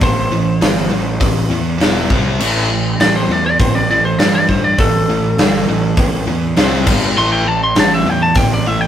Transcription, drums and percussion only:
0.01 kick loud
0.01 open hi-hat medium
0.62 snare loud
0.62 open hi-hat medium
1.21 kick loud
1.21 open hi-hat medium
1.81 snare loud
1.81 open hi-hat medium
2.10 kick loud
2.40 crash loud
3.00 snare loud
3.00 open hi-hat medium
3.59 kick loud
3.59 open hi-hat medium
4.19 snare loud
4.19 open hi-hat medium
4.49 kick medium
4.78 kick loud
4.78 open hi-hat medium
5.38 snare loud
5.38 open hi-hat medium
5.97 kick loud
5.97 open hi-hat medium
6.56 snare loud
6.56 open hi-hat medium
6.87 kick loud
6.87 crash loud
7.76 snare loud
7.76 open hi-hat medium
8.35 kick loud
8.35 open hi-hat medium

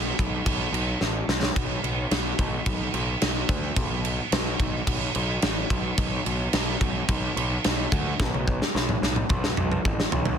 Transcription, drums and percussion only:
0.19 kick medium
0.19 crash medium
0.46 kick loud
0.46 crash medium
0.74 crash medium
1.01 snare medium
1.29 snare medium
1.43 snare medium
1.56 kick loud
1.56 crash medium
1.84 crash medium
2.11 snare loud
2.11 crash medium
2.39 kick medium
2.39 crash medium
2.66 kick loud
2.66 crash medium
2.94 crash medium
3.22 snare loud
3.22 crash medium
3.49 kick medium
3.49 crash medium
3.76 kick loud
3.76 crash medium
4.05 crash medium
4.32 snare loud
4.32 crash medium
4.60 kick medium
4.60 crash medium
4.87 kick loud
4.87 crash medium
5.15 crash medium
5.42 snare loud
5.42 crash medium
5.70 kick medium
5.70 crash medium
5.98 kick loud
5.98 crash medium
6.26 crash medium
6.53 snare loud
6.53 crash medium
6.81 kick medium
6.81 crash medium
7.09 kick loud
7.09 crash medium
7.37 crash medium
7.64 snare loud
7.64 crash medium
7.92 kick medium
7.92 crash medium
8.20 kick loud
8.20 snare medium
8.34 high tom medium
8.48 kick medium
8.62 snare medium
8.76 snare medium
8.89 mid tom medium
9.03 snare medium
9.16 mid tom medium
9.29 kick loud
9.29 mid tom medium
9.44 snare medium
9.57 mid tom medium
9.72 mid tom medium
9.85 kick medium
10.00 snare medium
10.12 floor tom loud
10.25 floor tom medium

